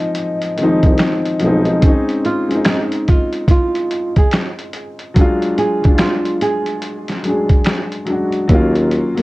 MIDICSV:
0, 0, Header, 1, 5, 480
1, 0, Start_track
1, 0, Tempo, 833333
1, 1051, Time_signature, 4, 2, 24, 8
1, 5311, End_track
2, 0, Start_track
2, 0, Title_t, "Nylon-string guitar"
2, 0, Program_c, 0, 24
2, 1298, Note_on_c, 0, 65, 80
2, 1511, Note_off_c, 0, 65, 0
2, 1539, Note_on_c, 0, 63, 79
2, 1777, Note_off_c, 0, 63, 0
2, 1777, Note_on_c, 0, 65, 87
2, 1991, Note_off_c, 0, 65, 0
2, 2020, Note_on_c, 0, 65, 91
2, 2380, Note_off_c, 0, 65, 0
2, 2407, Note_on_c, 0, 68, 80
2, 2486, Note_off_c, 0, 68, 0
2, 3216, Note_on_c, 0, 68, 83
2, 3431, Note_off_c, 0, 68, 0
2, 3455, Note_on_c, 0, 65, 84
2, 3670, Note_off_c, 0, 65, 0
2, 3696, Note_on_c, 0, 68, 77
2, 4058, Note_off_c, 0, 68, 0
2, 5311, End_track
3, 0, Start_track
3, 0, Title_t, "Upright piano"
3, 0, Program_c, 1, 0
3, 0, Control_c, 1, 64, 127
3, 0, Note_on_c, 1, 53, 90
3, 0, Note_on_c, 1, 56, 78
3, 0, Note_on_c, 1, 60, 80
3, 0, Note_on_c, 1, 63, 112
3, 196, Note_off_c, 1, 53, 0
3, 202, Note_off_c, 1, 56, 0
3, 208, Note_off_c, 1, 60, 0
3, 215, Note_off_c, 1, 63, 0
3, 324, Note_on_c, 1, 51, 62
3, 336, Note_on_c, 1, 56, 68
3, 350, Note_on_c, 1, 60, 83
3, 359, Note_on_c, 1, 53, 86
3, 362, Note_on_c, 1, 63, 106
3, 373, Note_off_c, 1, 51, 0
3, 747, Note_off_c, 1, 56, 0
3, 754, Note_off_c, 1, 60, 0
3, 759, Note_off_c, 1, 53, 0
3, 760, Note_off_c, 1, 63, 0
3, 805, Note_on_c, 1, 53, 83
3, 819, Note_on_c, 1, 56, 75
3, 831, Note_on_c, 1, 60, 82
3, 844, Note_on_c, 1, 63, 104
3, 1015, Note_off_c, 1, 53, 0
3, 1022, Note_off_c, 1, 56, 0
3, 1028, Note_off_c, 1, 60, 0
3, 1034, Note_off_c, 1, 63, 0
3, 1042, Note_on_c, 1, 56, 91
3, 1054, Note_on_c, 1, 60, 90
3, 1058, Control_c, 1, 64, 0
3, 1067, Note_on_c, 1, 61, 101
3, 1080, Note_on_c, 1, 63, 105
3, 1167, Control_c, 1, 64, 127
3, 1354, Note_off_c, 1, 56, 0
3, 1361, Note_off_c, 1, 60, 0
3, 1367, Note_off_c, 1, 61, 0
3, 1373, Note_off_c, 1, 63, 0
3, 1430, Note_on_c, 1, 56, 80
3, 1442, Note_on_c, 1, 60, 69
3, 1455, Note_on_c, 1, 61, 62
3, 1467, Note_on_c, 1, 63, 84
3, 2206, Note_off_c, 1, 56, 0
3, 2212, Note_off_c, 1, 60, 0
3, 2219, Note_off_c, 1, 61, 0
3, 2225, Note_off_c, 1, 63, 0
3, 2961, Note_on_c, 1, 54, 109
3, 2975, Note_on_c, 1, 56, 94
3, 2978, Control_c, 1, 64, 0
3, 2988, Note_on_c, 1, 62, 89
3, 3000, Note_on_c, 1, 65, 113
3, 3067, Control_c, 1, 64, 127
3, 3274, Note_off_c, 1, 54, 0
3, 3281, Note_off_c, 1, 56, 0
3, 3287, Note_off_c, 1, 62, 0
3, 3294, Note_off_c, 1, 65, 0
3, 3349, Note_on_c, 1, 54, 76
3, 3363, Note_on_c, 1, 56, 66
3, 3375, Note_on_c, 1, 62, 78
3, 3389, Note_on_c, 1, 65, 68
3, 3403, Note_off_c, 1, 65, 0
3, 3426, Note_on_c, 1, 65, 85
3, 4036, Note_off_c, 1, 54, 0
3, 4042, Note_off_c, 1, 56, 0
3, 4049, Note_off_c, 1, 62, 0
3, 4074, Note_off_c, 1, 65, 0
3, 4162, Note_on_c, 1, 54, 66
3, 4175, Note_on_c, 1, 56, 65
3, 4189, Note_on_c, 1, 62, 66
3, 4201, Note_on_c, 1, 68, 82
3, 4580, Note_off_c, 1, 54, 0
3, 4587, Note_off_c, 1, 56, 0
3, 4593, Note_off_c, 1, 62, 0
3, 4600, Note_off_c, 1, 68, 0
3, 4638, Note_on_c, 1, 54, 79
3, 4652, Note_on_c, 1, 56, 69
3, 4665, Note_on_c, 1, 62, 66
3, 4677, Note_on_c, 1, 66, 78
3, 4851, Note_off_c, 1, 54, 0
3, 4858, Note_off_c, 1, 56, 0
3, 4865, Note_off_c, 1, 62, 0
3, 4871, Note_off_c, 1, 66, 0
3, 4883, Note_on_c, 1, 54, 116
3, 4897, Note_on_c, 1, 58, 97
3, 4899, Control_c, 1, 64, 0
3, 4909, Note_on_c, 1, 61, 93
3, 4922, Note_on_c, 1, 65, 123
3, 4983, Control_c, 1, 64, 127
3, 5195, Note_off_c, 1, 54, 0
3, 5202, Note_off_c, 1, 58, 0
3, 5208, Note_off_c, 1, 61, 0
3, 5214, Note_off_c, 1, 65, 0
3, 5268, Note_on_c, 1, 54, 86
3, 5281, Note_on_c, 1, 58, 87
3, 5293, Note_on_c, 1, 61, 85
3, 5311, Note_off_c, 1, 54, 0
3, 5311, Note_off_c, 1, 58, 0
3, 5311, Note_off_c, 1, 61, 0
3, 5311, End_track
4, 0, Start_track
4, 0, Title_t, "Tuba"
4, 0, Program_c, 2, 58
4, 483, Note_on_c, 2, 36, 89
4, 559, Note_off_c, 2, 36, 0
4, 817, Note_on_c, 2, 35, 101
4, 1018, Note_off_c, 2, 35, 0
4, 4897, Note_on_c, 2, 39, 114
4, 5224, Note_off_c, 2, 39, 0
4, 5285, Note_on_c, 2, 41, 87
4, 5311, Note_off_c, 2, 41, 0
4, 5311, End_track
5, 0, Start_track
5, 0, Title_t, "Drums"
5, 85, Note_on_c, 9, 42, 92
5, 143, Note_off_c, 9, 42, 0
5, 240, Note_on_c, 9, 42, 52
5, 297, Note_off_c, 9, 42, 0
5, 331, Note_on_c, 9, 42, 70
5, 389, Note_off_c, 9, 42, 0
5, 477, Note_on_c, 9, 42, 48
5, 479, Note_on_c, 9, 36, 88
5, 534, Note_off_c, 9, 42, 0
5, 537, Note_off_c, 9, 36, 0
5, 562, Note_on_c, 9, 42, 76
5, 571, Note_on_c, 9, 26, 82
5, 575, Note_on_c, 9, 38, 94
5, 620, Note_off_c, 9, 42, 0
5, 629, Note_off_c, 9, 26, 0
5, 633, Note_off_c, 9, 38, 0
5, 722, Note_on_c, 9, 42, 51
5, 780, Note_off_c, 9, 42, 0
5, 804, Note_on_c, 9, 42, 63
5, 861, Note_off_c, 9, 42, 0
5, 952, Note_on_c, 9, 42, 44
5, 1010, Note_off_c, 9, 42, 0
5, 1049, Note_on_c, 9, 42, 88
5, 1053, Note_on_c, 9, 36, 113
5, 1107, Note_off_c, 9, 42, 0
5, 1111, Note_off_c, 9, 36, 0
5, 1202, Note_on_c, 9, 42, 45
5, 1260, Note_off_c, 9, 42, 0
5, 1294, Note_on_c, 9, 42, 50
5, 1351, Note_off_c, 9, 42, 0
5, 1443, Note_on_c, 9, 42, 47
5, 1501, Note_off_c, 9, 42, 0
5, 1523, Note_on_c, 9, 42, 83
5, 1526, Note_on_c, 9, 26, 94
5, 1530, Note_on_c, 9, 38, 102
5, 1581, Note_off_c, 9, 42, 0
5, 1584, Note_off_c, 9, 26, 0
5, 1588, Note_off_c, 9, 38, 0
5, 1681, Note_on_c, 9, 42, 55
5, 1738, Note_off_c, 9, 42, 0
5, 1773, Note_on_c, 9, 42, 60
5, 1778, Note_on_c, 9, 36, 88
5, 1831, Note_off_c, 9, 42, 0
5, 1835, Note_off_c, 9, 36, 0
5, 1916, Note_on_c, 9, 42, 53
5, 1974, Note_off_c, 9, 42, 0
5, 2004, Note_on_c, 9, 36, 96
5, 2007, Note_on_c, 9, 42, 81
5, 2062, Note_off_c, 9, 36, 0
5, 2064, Note_off_c, 9, 42, 0
5, 2161, Note_on_c, 9, 42, 51
5, 2218, Note_off_c, 9, 42, 0
5, 2251, Note_on_c, 9, 42, 73
5, 2309, Note_off_c, 9, 42, 0
5, 2397, Note_on_c, 9, 42, 44
5, 2400, Note_on_c, 9, 36, 85
5, 2455, Note_off_c, 9, 42, 0
5, 2457, Note_off_c, 9, 36, 0
5, 2484, Note_on_c, 9, 42, 82
5, 2493, Note_on_c, 9, 26, 78
5, 2497, Note_on_c, 9, 38, 101
5, 2542, Note_off_c, 9, 42, 0
5, 2551, Note_off_c, 9, 26, 0
5, 2555, Note_off_c, 9, 38, 0
5, 2642, Note_on_c, 9, 42, 53
5, 2700, Note_off_c, 9, 42, 0
5, 2726, Note_on_c, 9, 42, 64
5, 2783, Note_off_c, 9, 42, 0
5, 2875, Note_on_c, 9, 42, 43
5, 2932, Note_off_c, 9, 42, 0
5, 2972, Note_on_c, 9, 42, 87
5, 2974, Note_on_c, 9, 36, 105
5, 3029, Note_off_c, 9, 42, 0
5, 3031, Note_off_c, 9, 36, 0
5, 3123, Note_on_c, 9, 42, 52
5, 3181, Note_off_c, 9, 42, 0
5, 3214, Note_on_c, 9, 42, 53
5, 3271, Note_off_c, 9, 42, 0
5, 3363, Note_on_c, 9, 42, 46
5, 3370, Note_on_c, 9, 36, 91
5, 3421, Note_off_c, 9, 42, 0
5, 3428, Note_off_c, 9, 36, 0
5, 3444, Note_on_c, 9, 42, 96
5, 3447, Note_on_c, 9, 26, 91
5, 3451, Note_on_c, 9, 38, 106
5, 3501, Note_off_c, 9, 42, 0
5, 3504, Note_off_c, 9, 26, 0
5, 3508, Note_off_c, 9, 38, 0
5, 3601, Note_on_c, 9, 42, 54
5, 3658, Note_off_c, 9, 42, 0
5, 3692, Note_on_c, 9, 42, 74
5, 3750, Note_off_c, 9, 42, 0
5, 3835, Note_on_c, 9, 42, 50
5, 3893, Note_off_c, 9, 42, 0
5, 3927, Note_on_c, 9, 42, 83
5, 3984, Note_off_c, 9, 42, 0
5, 4079, Note_on_c, 9, 42, 54
5, 4087, Note_on_c, 9, 38, 35
5, 4137, Note_off_c, 9, 42, 0
5, 4145, Note_off_c, 9, 38, 0
5, 4170, Note_on_c, 9, 42, 70
5, 4228, Note_off_c, 9, 42, 0
5, 4317, Note_on_c, 9, 42, 43
5, 4319, Note_on_c, 9, 36, 77
5, 4374, Note_off_c, 9, 42, 0
5, 4377, Note_off_c, 9, 36, 0
5, 4403, Note_on_c, 9, 42, 80
5, 4412, Note_on_c, 9, 26, 77
5, 4416, Note_on_c, 9, 38, 105
5, 4461, Note_off_c, 9, 42, 0
5, 4470, Note_off_c, 9, 26, 0
5, 4474, Note_off_c, 9, 38, 0
5, 4561, Note_on_c, 9, 42, 52
5, 4619, Note_off_c, 9, 42, 0
5, 4647, Note_on_c, 9, 42, 57
5, 4704, Note_off_c, 9, 42, 0
5, 4796, Note_on_c, 9, 42, 38
5, 4853, Note_off_c, 9, 42, 0
5, 4892, Note_on_c, 9, 42, 84
5, 4894, Note_on_c, 9, 36, 113
5, 4950, Note_off_c, 9, 42, 0
5, 4951, Note_off_c, 9, 36, 0
5, 5044, Note_on_c, 9, 42, 51
5, 5102, Note_off_c, 9, 42, 0
5, 5135, Note_on_c, 9, 42, 60
5, 5193, Note_off_c, 9, 42, 0
5, 5285, Note_on_c, 9, 42, 44
5, 5311, Note_off_c, 9, 42, 0
5, 5311, End_track
0, 0, End_of_file